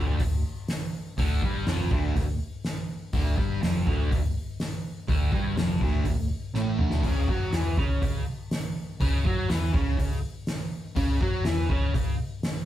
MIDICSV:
0, 0, Header, 1, 4, 480
1, 0, Start_track
1, 0, Tempo, 489396
1, 1154, Time_signature, 4, 2, 24, 8
1, 12408, End_track
2, 0, Start_track
2, 0, Title_t, "Distorted electric guitar"
2, 0, Program_c, 0, 30
2, 0, Note_on_c, 0, 38, 91
2, 0, Note_on_c, 0, 50, 87
2, 187, Note_off_c, 0, 38, 0
2, 195, Note_off_c, 0, 50, 0
2, 199, Note_on_c, 0, 38, 73
2, 389, Note_off_c, 0, 38, 0
2, 1153, Note_on_c, 0, 38, 90
2, 1162, Note_on_c, 0, 50, 109
2, 1386, Note_off_c, 0, 38, 0
2, 1391, Note_off_c, 0, 50, 0
2, 1409, Note_on_c, 0, 43, 85
2, 1416, Note_on_c, 0, 55, 95
2, 1634, Note_off_c, 0, 43, 0
2, 1637, Note_off_c, 0, 55, 0
2, 1639, Note_on_c, 0, 41, 99
2, 1647, Note_on_c, 0, 53, 109
2, 1868, Note_off_c, 0, 41, 0
2, 1873, Note_off_c, 0, 53, 0
2, 1884, Note_on_c, 0, 50, 85
2, 1886, Note_on_c, 0, 38, 87
2, 2108, Note_off_c, 0, 38, 0
2, 2111, Note_off_c, 0, 50, 0
2, 2120, Note_on_c, 0, 38, 79
2, 2308, Note_off_c, 0, 38, 0
2, 3075, Note_on_c, 0, 38, 95
2, 3084, Note_on_c, 0, 50, 112
2, 3302, Note_off_c, 0, 38, 0
2, 3306, Note_on_c, 0, 43, 84
2, 3309, Note_off_c, 0, 50, 0
2, 3313, Note_on_c, 0, 55, 92
2, 3541, Note_off_c, 0, 43, 0
2, 3544, Note_off_c, 0, 55, 0
2, 3553, Note_on_c, 0, 41, 104
2, 3559, Note_on_c, 0, 53, 108
2, 3784, Note_off_c, 0, 41, 0
2, 3787, Note_off_c, 0, 53, 0
2, 3797, Note_on_c, 0, 38, 80
2, 3801, Note_on_c, 0, 50, 92
2, 4019, Note_off_c, 0, 38, 0
2, 4028, Note_off_c, 0, 50, 0
2, 4031, Note_on_c, 0, 38, 68
2, 4222, Note_off_c, 0, 38, 0
2, 4984, Note_on_c, 0, 38, 94
2, 4995, Note_on_c, 0, 50, 113
2, 5218, Note_off_c, 0, 38, 0
2, 5222, Note_on_c, 0, 43, 86
2, 5225, Note_off_c, 0, 50, 0
2, 5230, Note_on_c, 0, 55, 104
2, 5452, Note_off_c, 0, 43, 0
2, 5456, Note_on_c, 0, 41, 99
2, 5458, Note_off_c, 0, 55, 0
2, 5462, Note_on_c, 0, 53, 110
2, 5696, Note_off_c, 0, 41, 0
2, 5699, Note_off_c, 0, 53, 0
2, 5707, Note_on_c, 0, 38, 83
2, 5716, Note_on_c, 0, 50, 94
2, 5931, Note_off_c, 0, 38, 0
2, 5943, Note_on_c, 0, 38, 72
2, 5946, Note_off_c, 0, 50, 0
2, 6139, Note_off_c, 0, 38, 0
2, 6427, Note_on_c, 0, 45, 90
2, 6429, Note_on_c, 0, 57, 94
2, 6661, Note_off_c, 0, 45, 0
2, 6663, Note_off_c, 0, 57, 0
2, 6666, Note_on_c, 0, 38, 85
2, 6677, Note_on_c, 0, 50, 91
2, 6901, Note_off_c, 0, 38, 0
2, 6907, Note_off_c, 0, 50, 0
2, 6913, Note_on_c, 0, 49, 93
2, 6924, Note_on_c, 0, 61, 103
2, 7145, Note_off_c, 0, 49, 0
2, 7150, Note_off_c, 0, 61, 0
2, 7150, Note_on_c, 0, 54, 80
2, 7161, Note_on_c, 0, 66, 96
2, 7383, Note_off_c, 0, 54, 0
2, 7389, Note_off_c, 0, 66, 0
2, 7394, Note_on_c, 0, 52, 103
2, 7399, Note_on_c, 0, 64, 97
2, 7626, Note_off_c, 0, 52, 0
2, 7628, Note_off_c, 0, 64, 0
2, 7631, Note_on_c, 0, 49, 85
2, 7636, Note_on_c, 0, 61, 92
2, 7859, Note_off_c, 0, 49, 0
2, 7867, Note_off_c, 0, 61, 0
2, 7871, Note_on_c, 0, 49, 73
2, 8064, Note_off_c, 0, 49, 0
2, 8831, Note_on_c, 0, 49, 103
2, 8843, Note_on_c, 0, 61, 108
2, 9065, Note_off_c, 0, 49, 0
2, 9071, Note_off_c, 0, 61, 0
2, 9077, Note_on_c, 0, 54, 82
2, 9084, Note_on_c, 0, 66, 96
2, 9308, Note_off_c, 0, 54, 0
2, 9312, Note_off_c, 0, 66, 0
2, 9320, Note_on_c, 0, 52, 97
2, 9329, Note_on_c, 0, 64, 113
2, 9546, Note_off_c, 0, 52, 0
2, 9550, Note_on_c, 0, 49, 80
2, 9554, Note_off_c, 0, 64, 0
2, 9559, Note_on_c, 0, 61, 92
2, 9785, Note_off_c, 0, 49, 0
2, 9790, Note_off_c, 0, 61, 0
2, 9796, Note_on_c, 0, 49, 79
2, 9987, Note_off_c, 0, 49, 0
2, 10745, Note_on_c, 0, 49, 98
2, 10751, Note_on_c, 0, 61, 106
2, 10983, Note_off_c, 0, 49, 0
2, 10986, Note_off_c, 0, 61, 0
2, 10999, Note_on_c, 0, 54, 80
2, 11006, Note_on_c, 0, 66, 88
2, 11229, Note_off_c, 0, 54, 0
2, 11232, Note_off_c, 0, 66, 0
2, 11233, Note_on_c, 0, 52, 101
2, 11236, Note_on_c, 0, 64, 102
2, 11467, Note_off_c, 0, 52, 0
2, 11468, Note_off_c, 0, 64, 0
2, 11473, Note_on_c, 0, 49, 82
2, 11482, Note_on_c, 0, 61, 86
2, 11707, Note_off_c, 0, 49, 0
2, 11711, Note_off_c, 0, 61, 0
2, 11717, Note_on_c, 0, 49, 72
2, 11908, Note_off_c, 0, 49, 0
2, 12408, End_track
3, 0, Start_track
3, 0, Title_t, "Picked electric bass"
3, 0, Program_c, 1, 34
3, 0, Note_on_c, 1, 26, 102
3, 172, Note_off_c, 1, 26, 0
3, 192, Note_on_c, 1, 26, 82
3, 417, Note_off_c, 1, 26, 0
3, 1151, Note_on_c, 1, 26, 90
3, 1375, Note_off_c, 1, 26, 0
3, 1391, Note_on_c, 1, 31, 98
3, 1615, Note_off_c, 1, 31, 0
3, 1642, Note_on_c, 1, 29, 89
3, 1861, Note_off_c, 1, 29, 0
3, 1868, Note_on_c, 1, 26, 90
3, 2093, Note_off_c, 1, 26, 0
3, 2107, Note_on_c, 1, 26, 77
3, 2332, Note_off_c, 1, 26, 0
3, 3069, Note_on_c, 1, 26, 97
3, 3293, Note_off_c, 1, 26, 0
3, 3314, Note_on_c, 1, 31, 96
3, 3535, Note_off_c, 1, 31, 0
3, 3561, Note_on_c, 1, 29, 98
3, 3779, Note_off_c, 1, 29, 0
3, 3794, Note_on_c, 1, 26, 100
3, 4015, Note_off_c, 1, 26, 0
3, 4027, Note_on_c, 1, 26, 74
3, 4252, Note_off_c, 1, 26, 0
3, 4981, Note_on_c, 1, 26, 97
3, 5208, Note_off_c, 1, 26, 0
3, 5214, Note_on_c, 1, 31, 101
3, 5440, Note_off_c, 1, 31, 0
3, 5446, Note_on_c, 1, 29, 96
3, 5680, Note_off_c, 1, 29, 0
3, 5693, Note_on_c, 1, 26, 96
3, 5924, Note_off_c, 1, 26, 0
3, 5933, Note_on_c, 1, 26, 79
3, 6164, Note_off_c, 1, 26, 0
3, 6411, Note_on_c, 1, 33, 97
3, 6643, Note_off_c, 1, 33, 0
3, 6657, Note_on_c, 1, 26, 84
3, 6887, Note_off_c, 1, 26, 0
3, 6898, Note_on_c, 1, 37, 93
3, 7127, Note_off_c, 1, 37, 0
3, 7135, Note_on_c, 1, 42, 92
3, 7358, Note_off_c, 1, 42, 0
3, 7364, Note_on_c, 1, 40, 95
3, 7600, Note_off_c, 1, 40, 0
3, 7622, Note_on_c, 1, 37, 90
3, 7850, Note_off_c, 1, 37, 0
3, 7866, Note_on_c, 1, 37, 77
3, 8092, Note_off_c, 1, 37, 0
3, 8827, Note_on_c, 1, 37, 88
3, 9053, Note_off_c, 1, 37, 0
3, 9067, Note_on_c, 1, 42, 88
3, 9293, Note_off_c, 1, 42, 0
3, 9306, Note_on_c, 1, 40, 98
3, 9533, Note_off_c, 1, 40, 0
3, 9556, Note_on_c, 1, 37, 88
3, 9778, Note_off_c, 1, 37, 0
3, 9788, Note_on_c, 1, 37, 82
3, 10014, Note_off_c, 1, 37, 0
3, 10752, Note_on_c, 1, 37, 93
3, 10977, Note_off_c, 1, 37, 0
3, 10988, Note_on_c, 1, 42, 91
3, 11214, Note_off_c, 1, 42, 0
3, 11231, Note_on_c, 1, 40, 93
3, 11456, Note_off_c, 1, 40, 0
3, 11468, Note_on_c, 1, 37, 93
3, 11695, Note_off_c, 1, 37, 0
3, 11711, Note_on_c, 1, 37, 78
3, 11936, Note_off_c, 1, 37, 0
3, 12408, End_track
4, 0, Start_track
4, 0, Title_t, "Drums"
4, 191, Note_on_c, 9, 36, 88
4, 193, Note_on_c, 9, 46, 62
4, 289, Note_off_c, 9, 36, 0
4, 291, Note_off_c, 9, 46, 0
4, 671, Note_on_c, 9, 46, 58
4, 672, Note_on_c, 9, 38, 109
4, 769, Note_off_c, 9, 46, 0
4, 770, Note_off_c, 9, 38, 0
4, 1156, Note_on_c, 9, 36, 105
4, 1159, Note_on_c, 9, 46, 64
4, 1254, Note_off_c, 9, 36, 0
4, 1257, Note_off_c, 9, 46, 0
4, 1395, Note_on_c, 9, 36, 104
4, 1493, Note_off_c, 9, 36, 0
4, 1634, Note_on_c, 9, 46, 58
4, 1635, Note_on_c, 9, 38, 115
4, 1732, Note_off_c, 9, 46, 0
4, 1733, Note_off_c, 9, 38, 0
4, 1875, Note_on_c, 9, 36, 112
4, 1974, Note_off_c, 9, 36, 0
4, 2116, Note_on_c, 9, 36, 82
4, 2120, Note_on_c, 9, 46, 53
4, 2214, Note_off_c, 9, 36, 0
4, 2218, Note_off_c, 9, 46, 0
4, 2593, Note_on_c, 9, 46, 47
4, 2594, Note_on_c, 9, 38, 97
4, 2692, Note_off_c, 9, 38, 0
4, 2692, Note_off_c, 9, 46, 0
4, 3069, Note_on_c, 9, 46, 56
4, 3073, Note_on_c, 9, 36, 105
4, 3167, Note_off_c, 9, 46, 0
4, 3172, Note_off_c, 9, 36, 0
4, 3315, Note_on_c, 9, 36, 101
4, 3318, Note_on_c, 9, 38, 32
4, 3413, Note_off_c, 9, 36, 0
4, 3416, Note_off_c, 9, 38, 0
4, 3559, Note_on_c, 9, 46, 54
4, 3560, Note_on_c, 9, 38, 108
4, 3658, Note_off_c, 9, 38, 0
4, 3658, Note_off_c, 9, 46, 0
4, 3795, Note_on_c, 9, 36, 102
4, 3893, Note_off_c, 9, 36, 0
4, 4034, Note_on_c, 9, 36, 96
4, 4040, Note_on_c, 9, 46, 57
4, 4133, Note_off_c, 9, 36, 0
4, 4138, Note_off_c, 9, 46, 0
4, 4509, Note_on_c, 9, 46, 52
4, 4510, Note_on_c, 9, 38, 96
4, 4608, Note_off_c, 9, 38, 0
4, 4608, Note_off_c, 9, 46, 0
4, 4987, Note_on_c, 9, 36, 104
4, 4990, Note_on_c, 9, 46, 56
4, 5085, Note_off_c, 9, 36, 0
4, 5088, Note_off_c, 9, 46, 0
4, 5223, Note_on_c, 9, 36, 101
4, 5321, Note_off_c, 9, 36, 0
4, 5466, Note_on_c, 9, 46, 57
4, 5467, Note_on_c, 9, 38, 112
4, 5564, Note_off_c, 9, 46, 0
4, 5565, Note_off_c, 9, 38, 0
4, 5699, Note_on_c, 9, 36, 99
4, 5797, Note_off_c, 9, 36, 0
4, 5935, Note_on_c, 9, 46, 58
4, 5937, Note_on_c, 9, 36, 97
4, 6033, Note_off_c, 9, 46, 0
4, 6035, Note_off_c, 9, 36, 0
4, 6416, Note_on_c, 9, 38, 60
4, 6514, Note_off_c, 9, 38, 0
4, 6658, Note_on_c, 9, 45, 90
4, 6756, Note_off_c, 9, 45, 0
4, 6772, Note_on_c, 9, 38, 88
4, 6870, Note_off_c, 9, 38, 0
4, 6900, Note_on_c, 9, 36, 108
4, 6903, Note_on_c, 9, 46, 61
4, 6903, Note_on_c, 9, 49, 92
4, 6998, Note_off_c, 9, 36, 0
4, 7001, Note_off_c, 9, 46, 0
4, 7001, Note_off_c, 9, 49, 0
4, 7141, Note_on_c, 9, 36, 94
4, 7239, Note_off_c, 9, 36, 0
4, 7380, Note_on_c, 9, 46, 56
4, 7381, Note_on_c, 9, 38, 101
4, 7478, Note_off_c, 9, 46, 0
4, 7479, Note_off_c, 9, 38, 0
4, 7625, Note_on_c, 9, 36, 111
4, 7723, Note_off_c, 9, 36, 0
4, 7867, Note_on_c, 9, 36, 91
4, 7869, Note_on_c, 9, 46, 54
4, 7965, Note_off_c, 9, 36, 0
4, 7967, Note_off_c, 9, 46, 0
4, 8349, Note_on_c, 9, 46, 53
4, 8350, Note_on_c, 9, 38, 115
4, 8447, Note_off_c, 9, 46, 0
4, 8448, Note_off_c, 9, 38, 0
4, 8831, Note_on_c, 9, 46, 60
4, 8833, Note_on_c, 9, 36, 107
4, 8929, Note_off_c, 9, 46, 0
4, 8931, Note_off_c, 9, 36, 0
4, 9070, Note_on_c, 9, 38, 32
4, 9071, Note_on_c, 9, 36, 100
4, 9168, Note_off_c, 9, 38, 0
4, 9169, Note_off_c, 9, 36, 0
4, 9315, Note_on_c, 9, 46, 61
4, 9316, Note_on_c, 9, 38, 101
4, 9413, Note_off_c, 9, 46, 0
4, 9414, Note_off_c, 9, 38, 0
4, 9554, Note_on_c, 9, 36, 105
4, 9653, Note_off_c, 9, 36, 0
4, 9796, Note_on_c, 9, 36, 89
4, 9801, Note_on_c, 9, 46, 58
4, 9894, Note_off_c, 9, 36, 0
4, 9899, Note_off_c, 9, 46, 0
4, 10269, Note_on_c, 9, 46, 53
4, 10270, Note_on_c, 9, 38, 103
4, 10367, Note_off_c, 9, 46, 0
4, 10368, Note_off_c, 9, 38, 0
4, 10751, Note_on_c, 9, 46, 53
4, 10755, Note_on_c, 9, 36, 100
4, 10849, Note_off_c, 9, 46, 0
4, 10853, Note_off_c, 9, 36, 0
4, 10994, Note_on_c, 9, 36, 102
4, 11092, Note_off_c, 9, 36, 0
4, 11226, Note_on_c, 9, 46, 54
4, 11227, Note_on_c, 9, 38, 110
4, 11325, Note_off_c, 9, 46, 0
4, 11326, Note_off_c, 9, 38, 0
4, 11475, Note_on_c, 9, 36, 102
4, 11573, Note_off_c, 9, 36, 0
4, 11715, Note_on_c, 9, 36, 89
4, 11718, Note_on_c, 9, 46, 54
4, 11813, Note_off_c, 9, 36, 0
4, 11816, Note_off_c, 9, 46, 0
4, 12193, Note_on_c, 9, 46, 52
4, 12194, Note_on_c, 9, 38, 114
4, 12291, Note_off_c, 9, 46, 0
4, 12292, Note_off_c, 9, 38, 0
4, 12408, End_track
0, 0, End_of_file